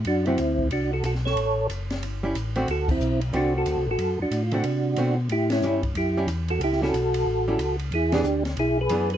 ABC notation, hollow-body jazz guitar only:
X:1
M:4/4
L:1/8
Q:"Swing" 1/4=183
K:D
V:1 name="Hollow-body jazz guitar"
z [D,A,=CF] z6 | z4 z [G,CE] z [D,A,=CF] | z4 [D,A,=CF]3 z | z3 [D,A,=CF] z2 [D,A,CF] z |
z2 [G,CE] z2 [G,CE] z2 | z [G,CE] z3 [G,CE] z2 | z [E,B,D^G] z4 [E,B,DG] z |]